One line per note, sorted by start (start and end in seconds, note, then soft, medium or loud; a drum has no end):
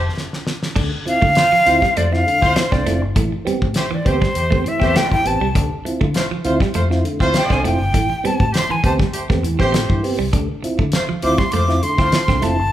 0.00 0.13 A5 loud
0.17 snare medium
0.33 snare medium
0.47 snare medium
0.63 snare medium
0.76 0.89 D2 loud
0.76 0.91 D3 medium
0.76 0.91 A3 medium
0.76 0.85 D4 medium
0.76 kick medium
0.76 crash medium
1.06 1.21 C4 medium
1.06 1.21 E4 medium
1.06 1.21 F4 loud
1.06 1.99 F5 loud
1.06 muted clean electric guitar stroke soft
1.06 muted fingered electric bass stroke soft
1.06 closed hi-hat medium
1.22 1.34 D3 medium
1.22 1.30 A3 medium
1.22 1.28 E4 soft
1.22 1.28 F4 soft
1.22 kick medium
1.35 1.46 A3 medium
1.35 1.46 F4 loud
1.35 1.46 C5 loud
1.35 snare loud
1.35 closed hi-hat medium
1.52 1.60 F3 medium
1.52 muted fingered electric bass stroke medium
1.65 1.80 D2 medium
1.65 1.75 A3 medium
1.65 1.81 C4 medium
1.65 1.81 E4 medium
1.65 1.76 F4 medium
1.65 1.81 F4 loud
1.65 1.76 C5 medium
1.65 muted clean electric guitar stroke soft
1.65 closed hi-hat medium
1.82 1.90 G3 medium
1.82 kick medium
1.82 snare soft
1.94 2.22 F2 medium
1.94 2.06 A3 medium
1.94 2.05 F4 medium
1.94 2.05 C5 medium
1.94 2.14 D5 medium
1.94 closed hi-hat medium
2.12 2.25 C4 medium
2.12 2.25 E4 medium
2.12 2.25 F4 medium
2.12 2.58 F5 loud
2.12 muted clean electric guitar stroke soft
2.12 snare soft
2.26 2.41 D3 medium
2.26 2.41 A3 medium
2.26 closed hi-hat medium
2.41 2.54 D2 medium
2.41 2.83 A3 loud
2.41 2.55 C4 medium
2.41 2.50 C4 medium
2.41 2.55 E4 medium
2.41 2.83 F4 loud
2.41 2.55 F4 medium
2.41 2.83 C5 loud
2.41 kick medium
2.41 snare soft
2.56 2.62 E4 soft
2.56 2.62 F4 soft
2.56 2.73 C5 medium
2.56 muted clean electric guitar stroke soft
2.56 snare loud
2.56 closed hi-hat medium
2.72 2.84 C2 medium
2.72 2.85 D3 medium
2.72 2.85 A3 medium
2.72 2.80 C4 medium
2.72 3.01 D5 medium
2.72 kick medium
2.72 snare soft
2.85 3.01 F1 medium
2.85 2.96 A3 medium
2.85 3.01 C4 medium
2.85 3.01 E4 medium
2.85 3.01 F4 medium
2.85 snare soft
2.85 closed hi-hat medium
3.01 3.13 G1 medium
3.16 3.29 A1 loud
3.16 3.31 A2 medium
3.16 3.31 E3 medium
3.16 3.26 A3 medium
3.16 kick medium
3.16 closed hi-hat medium
3.32 muted clean electric guitar stroke soft
3.45 3.56 G3 medium
3.45 3.60 B3 medium
3.45 3.60 C4 medium
3.45 3.61 G4 medium
3.45 muted fingered electric bass stroke soft
3.45 closed hi-hat medium
3.62 3.73 A2 medium
3.62 3.67 C4 soft
3.62 3.67 G4 soft
3.62 kick medium
3.74 3.85 A3 loud
3.74 3.86 G4 medium
3.74 3.85 C5 loud
3.74 3.96 C5 medium
3.74 snare loud
3.74 closed hi-hat medium
3.91 3.99 E3 medium
3.91 4.10 D5 medium
3.91 muted fingered electric bass stroke medium
4.05 4.19 D2 medium
4.05 4.17 A3 medium
4.05 4.20 B3 loud
4.05 4.20 C4 medium
4.05 4.21 G4 loud
4.05 4.17 G4 medium
4.05 4.16 C5 loud
4.05 4.70 C5 medium
4.05 muted clean electric guitar stroke soft
4.05 kick medium
4.05 closed hi-hat medium
4.21 4.30 G3 medium
4.21 kick medium
4.21 snare soft
4.35 4.61 E2 medium
4.35 4.46 A3 medium
4.35 4.46 G4 medium
4.35 4.46 C5 medium
4.35 closed hi-hat medium
4.51 4.59 A3 medium
4.51 4.65 B3 medium
4.51 4.65 C4 medium
4.51 4.65 G4 medium
4.51 kick medium
4.64 4.80 A2 medium
4.64 4.80 E3 medium
4.64 4.98 E5 loud
4.64 muted clean electric guitar stroke soft
4.64 closed hi-hat medium
4.80 4.93 E2 medium
4.80 5.23 A3 loud
4.80 4.94 B3 medium
4.80 4.88 C4 medium
4.80 4.94 C4 medium
4.80 4.94 G4 medium
4.80 5.23 G4 loud
4.80 5.23 C5 loud
4.80 kick medium
4.80 snare soft
4.95 5.04 A3 medium
4.95 5.01 C4 soft
4.95 5.01 G4 soft
4.95 5.11 G5 loud
4.95 snare loud
4.95 closed hi-hat medium
5.10 5.24 A2 medium
5.10 5.24 E3 medium
5.10 5.29 G5 loud
5.10 muted clean electric guitar stroke soft
5.10 kick medium
5.25 5.39 A1 medium
5.25 5.40 B3 medium
5.25 5.40 C4 medium
5.25 5.40 G4 medium
5.25 5.56 A5 medium
5.25 closed hi-hat medium
5.41 5.55 C2 medium
5.41 5.49 G3 medium
5.55 5.68 D2 loud
5.55 5.70 D3 medium
5.55 5.70 A3 medium
5.55 5.65 D4 medium
5.55 kick loud
5.55 closed hi-hat loud
5.85 6.00 C4 medium
5.85 6.00 E4 medium
5.85 6.00 F4 medium
5.85 muted fingered electric bass stroke soft
5.85 muted clean electric guitar stroke soft
5.85 closed hi-hat medium
6.01 6.13 D3 medium
6.01 6.09 A3 medium
6.01 6.07 E4 soft
6.01 6.07 F4 soft
6.01 kick medium
6.14 6.25 A3 loud
6.14 6.25 F4 medium
6.14 6.25 C5 loud
6.14 snare loud
6.14 closed hi-hat medium
6.31 6.39 F3 medium
6.31 muted fingered electric bass stroke medium
6.44 6.58 D2 medium
6.44 6.54 A3 medium
6.44 6.60 C4 loud
6.44 6.60 E4 medium
6.44 6.60 F4 loud
6.44 6.55 F4 medium
6.44 6.55 C5 medium
6.44 muted clean electric guitar stroke soft
6.44 closed hi-hat medium
6.60 6.70 G3 medium
6.60 kick medium
6.60 snare soft
6.74 7.00 F2 loud
6.74 6.84 A3 medium
6.74 6.84 F4 medium
6.74 6.84 C5 medium
6.74 closed hi-hat medium
6.90 7.04 C4 medium
6.90 7.04 E4 medium
6.90 7.04 F4 medium
6.90 muted clean electric guitar stroke soft
6.90 snare soft
7.04 7.19 D3 medium
7.04 7.19 A3 medium
7.04 closed hi-hat medium
7.19 7.32 D2 medium
7.19 7.62 A3 loud
7.19 7.33 C4 medium
7.19 7.29 C4 medium
7.19 7.33 E4 medium
7.19 7.33 F4 medium
7.19 7.62 F4 loud
7.19 7.62 C5 loud
7.19 kick medium
7.19 snare soft
7.34 7.40 E4 soft
7.34 7.40 F4 soft
7.34 7.54 G5 medium
7.34 muted clean electric guitar stroke soft
7.34 snare loud
7.34 closed hi-hat medium
7.50 7.62 C2 medium
7.50 7.64 D3 medium
7.50 7.64 A3 medium
7.50 7.59 C4 medium
7.50 7.65 G#5 medium
7.50 kick medium
7.50 snare soft
7.64 7.78 F1 medium
7.64 7.74 A3 medium
7.64 7.79 C4 medium
7.64 7.79 E4 medium
7.64 7.79 F4 medium
7.64 8.28 G5 medium
7.64 closed hi-hat medium
7.80 7.92 G1 loud
7.94 8.08 A1 medium
7.94 8.09 A2 medium
7.94 8.09 E3 medium
7.94 8.03 A3 medium
7.94 kick loud
7.94 closed hi-hat medium
8.10 muted clean electric guitar stroke soft
8.24 8.34 G3 medium
8.24 8.39 B3 medium
8.24 8.38 C4 medium
8.24 8.38 G4 loud
8.24 8.55 A5 loud
8.24 muted fingered electric bass stroke soft
8.24 closed hi-hat medium
8.39 8.52 A2 medium
8.39 8.45 C4 soft
8.39 8.45 G4 soft
8.39 kick medium
8.52 8.63 A3 medium
8.52 8.63 G4 medium
8.52 8.63 C5 medium
8.52 snare loud
8.52 closed hi-hat loud
8.56 8.73 C6 loud
8.69 8.78 E3 medium
8.69 8.85 G#5 medium
8.69 muted fingered electric bass stroke medium
8.83 8.97 D2 loud
8.83 8.93 A3 medium
8.83 8.99 B3 medium
8.83 8.99 C4 medium
8.83 8.93 G4 medium
8.83 8.99 G4 medium
8.83 8.94 C5 medium
8.83 8.92 A5 medium
8.83 muted clean electric guitar stroke soft
8.83 kick medium
8.83 closed hi-hat medium
8.99 9.08 G3 medium
8.99 kick medium
8.99 snare soft
9.12 9.23 A3 medium
9.12 9.23 G4 medium
9.12 9.23 C5 medium
9.12 closed hi-hat medium
9.29 9.42 E2 medium
9.29 9.38 A3 medium
9.29 9.43 B3 medium
9.29 9.43 C4 medium
9.29 9.43 G4 medium
9.29 kick medium
9.29 snare soft
9.43 9.57 E2 loud
9.43 9.59 A2 medium
9.43 9.59 E3 medium
9.43 muted clean electric guitar stroke soft
9.43 closed hi-hat medium
9.59 9.72 A1 medium
9.59 10.01 A3 medium
9.59 9.73 B3 medium
9.59 9.67 C4 medium
9.59 9.73 C4 medium
9.59 10.01 G4 loud
9.59 9.73 G4 medium
9.59 10.01 C5 loud
9.59 kick medium
9.59 snare soft
9.72 9.87 A2 loud
9.72 9.82 A3 medium
9.72 9.80 C4 soft
9.72 9.80 G4 soft
9.72 snare loud
9.72 closed hi-hat medium
9.89 10.01 G2 medium
9.89 10.03 A2 medium
9.89 10.03 E3 medium
9.89 muted clean electric guitar stroke soft
9.89 kick medium
10.03 10.18 B3 medium
10.03 10.19 C4 medium
10.03 10.19 G4 medium
10.03 open hi-hat medium
10.19 10.31 C2 medium
10.19 10.27 G3 medium
10.33 10.47 D2 loud
10.33 10.49 D3 medium
10.33 10.49 A3 medium
10.33 10.42 D4 medium
10.33 kick loud
10.33 closed hi-hat medium
10.63 10.79 C4 medium
10.63 10.79 E4 medium
10.63 10.79 F4 loud
10.63 muted clean electric guitar stroke soft
10.63 muted fingered electric bass stroke soft
10.63 closed hi-hat medium
10.79 10.91 D3 loud
10.79 10.87 A3 medium
10.79 10.85 E4 soft
10.79 10.85 F4 soft
10.79 kick medium
10.92 11.04 A3 medium
10.92 11.04 F4 medium
10.92 11.03 C5 loud
10.92 snare loud
10.92 closed hi-hat medium
11.09 11.17 F3 medium
11.09 muted fingered electric bass stroke soft
11.22 11.37 D2 loud
11.22 11.33 A3 medium
11.22 11.38 C4 medium
11.22 11.38 E4 medium
11.22 11.33 F4 medium
11.22 11.38 F4 loud
11.22 11.33 C5 medium
11.22 11.40 D6 loud
11.22 muted clean electric guitar stroke soft
11.22 closed hi-hat medium
11.38 11.47 G3 medium
11.38 11.53 C6 loud
11.38 kick medium
11.38 snare soft
11.52 11.79 F2 medium
11.52 11.63 A3 medium
11.52 11.64 A3 medium
11.52 11.63 F4 medium
11.52 11.64 C5 medium
11.52 11.85 D6 loud
11.52 closed hi-hat medium
11.68 11.82 C4 medium
11.68 11.82 E4 medium
11.68 11.82 F4 medium
11.68 muted clean electric guitar stroke soft
11.68 snare soft
11.83 11.98 D3 medium
11.83 11.98 A3 medium
11.83 12.45 C6 medium
11.83 closed hi-hat medium
11.97 12.10 D2 medium
11.97 12.41 A3 loud
11.97 12.12 C4 medium
11.97 12.07 C4 medium
11.97 12.12 E4 medium
11.97 12.12 F4 medium
11.97 12.41 F4 loud
11.97 12.41 C5 loud
11.97 kick medium
11.97 snare soft
12.12 12.19 E4 soft
12.12 12.19 F4 soft
12.12 muted clean electric guitar stroke soft
12.12 snare loud
12.12 closed hi-hat loud
12.28 12.40 C2 loud
12.28 12.42 D3 medium
12.28 12.42 A3 medium
12.28 12.37 C4 medium
12.28 kick medium
12.28 snare soft
12.41 12.59 F1 medium
12.41 12.52 A3 medium
12.41 12.57 C4 medium
12.41 12.57 E4 medium
12.41 12.57 F4 medium
12.41 12.72 A5 loud
12.41 snare soft
12.41 closed hi-hat medium
12.59 12.71 G1 medium